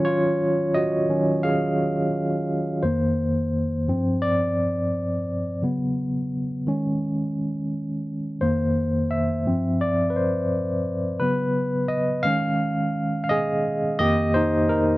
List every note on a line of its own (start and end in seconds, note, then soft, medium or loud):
0.00 1.08 D#3 medium
0.00 1.09 F#3 medium
0.00 1.09 C#4 medium
0.05 0.70 F4 medium
0.05 0.76 C#5 medium
0.74 1.40 F#4 medium
0.74 1.45 D#5 medium
1.09 1.40 D#3 soft
1.09 1.40 F#3 soft
1.09 1.40 C#4 medium
1.43 2.09 G#4 medium
1.43 2.09 F5 medium
2.83 3.83 F2 soft
2.83 3.84 D#3 soft
2.83 3.84 A#3 soft
2.83 4.18 C5 medium
3.88 5.58 G2 soft
3.88 5.58 F3 soft
3.88 5.58 C4 medium
4.22 5.22 D5 medium
5.62 6.12 C#3 soft
5.62 6.12 F#3 soft
5.62 6.13 B3 soft
6.67 8.37 D#3 soft
6.67 8.37 G#3 soft
6.67 8.37 C#4 medium
8.41 9.41 F2 soft
8.41 9.42 D#3 soft
8.41 9.42 A#3 soft
8.41 9.13 C5 medium
9.11 9.76 E5 medium
9.46 10.46 G2 soft
9.46 10.46 F3 soft
9.46 10.47 C4 medium
9.81 10.08 D5 medium
10.10 10.15 B4 soft
10.16 10.81 C5 medium
11.20 12.21 C#3 soft
11.20 12.21 F#3 soft
11.20 12.21 B3 soft
11.20 11.85 B4 medium
11.88 12.25 D#5 medium
12.23 13.95 D#3 soft
12.23 13.95 G#3 soft
12.23 13.95 C#4 medium
12.23 13.23 F5 medium
13.24 13.29 F5 medium
13.29 13.96 G#4 medium
13.29 13.98 D#5 medium
13.99 14.98 F2 medium
13.99 14.98 D#3 soft
13.99 14.98 A#3 medium
13.99 14.32 G4 medium
13.99 14.35 D#5 loud
14.34 14.67 D#4 medium
14.34 14.70 C5 medium
14.69 14.98 D#4 medium
14.69 14.98 A#4 medium